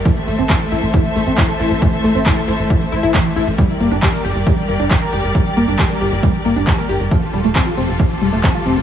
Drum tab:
HH |xxoxxxoxxxoxxxox|xxoxxooxxxoxxxox|xxoxxxoxxxoxxxox|xxoxxooxxxoxxxox|
CP |----x-------x---|----x-------x---|----x-------x---|----x-------x---|
BD |o---o---o---o---|o---o---o---o---|o---o---o---o---|o---o---o---o---|

HH |xxoxxxoxxxoxxxox|
CP |----x-------x---|
BD |o---o---o---o---|